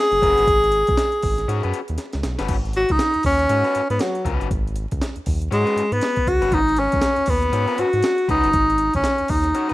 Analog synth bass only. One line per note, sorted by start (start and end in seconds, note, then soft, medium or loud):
0.12 0.21 F#1 medium
0.23 0.36 F#1 medium
0.38 0.46 G1 medium
0.48 0.84 G#1 loud
0.89 0.97 B1 medium
1.23 1.46 G#1 medium
1.48 1.62 G#2 loud
1.65 1.73 F#2 loud
1.90 1.98 D#2 medium
2.14 2.23 C#2 medium
2.24 2.38 B1 medium
2.40 2.48 G1 medium
2.49 2.85 G#1 medium
2.90 2.99 C#2 medium
3.15 3.19 D#2 soft
3.24 3.47 D#2 medium
3.50 3.63 G#2 loud
3.76 3.82 G#2 soft
3.90 3.99 G#2 loud
4.25 4.39 C#2 medium
4.41 4.50 G1 medium
4.50 4.87 G#1 loud
4.92 5.01 C#2 medium
5.16 5.20 D#2 soft
5.27 5.49 D#2 medium
5.52 5.65 G#2 loud
5.76 5.82 G#2 medium
5.92 6.01 G#2 medium
6.27 6.41 C#2 medium
6.42 6.51 G1 medium
6.52 6.88 G#1 loud
6.93 7.02 C#2 medium
7.18 7.22 D#2 soft
7.28 7.50 D#2 medium
7.53 7.66 G#2 loud
7.79 7.85 G#2 soft
7.93 8.03 G#2 loud
8.29 8.42 C#2 medium
8.45 8.53 G1 medium
8.54 8.90 G#1 loud
8.95 9.04 C#2 medium
9.20 9.24 D#2 soft
9.30 9.52 D#2 medium